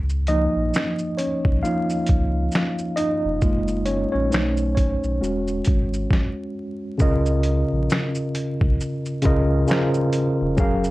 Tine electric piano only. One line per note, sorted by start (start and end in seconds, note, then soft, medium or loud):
0.28 1.59 F3 medium
0.28 1.59 A#3 medium
0.28 1.15 D#4 medium
0.28 1.21 D#5 loud
1.17 1.60 C#4 medium
1.17 1.59 C#5 medium
1.63 2.04 F3 soft
1.63 2.04 A#3 soft
1.63 2.04 D#4 medium
1.63 2.94 F4 medium
1.63 3.01 F5 loud
2.96 3.83 D#4 medium
2.96 3.89 D#5 medium
3.42 4.27 G#3 medium
3.42 4.28 A#3 medium
3.42 4.28 F4 medium
3.85 4.12 C#4 medium
3.85 4.11 C#5 medium
4.12 4.72 C#4 medium
4.12 4.74 C#5 medium
4.30 5.16 A3 medium
4.30 5.17 D#4 medium
4.30 5.17 C5 medium
4.75 5.20 C#4 soft
4.75 6.51 C#5 medium
5.21 5.84 G#3 soft
5.21 5.84 C#4 medium
5.21 5.84 F#4 medium
6.98 8.57 C#3 medium
6.98 8.58 C#4 medium
6.98 8.58 F4 medium
6.98 8.59 A#4 medium
6.98 8.59 D#5 loud
9.22 9.63 C#3 medium
9.22 9.63 C#4 medium
9.22 9.64 F4 medium
9.22 9.64 A#4 medium
9.22 9.65 D#5 loud
9.67 10.48 C#3 medium
9.67 10.48 C#4 medium
9.67 10.49 F4 medium
9.67 10.49 A#4 medium
9.67 10.50 C5 loud
10.57 10.91 F#3 medium
10.57 10.91 C#4 medium
10.57 10.91 G#4 medium
10.57 10.91 A#4 medium
10.57 10.91 F5 loud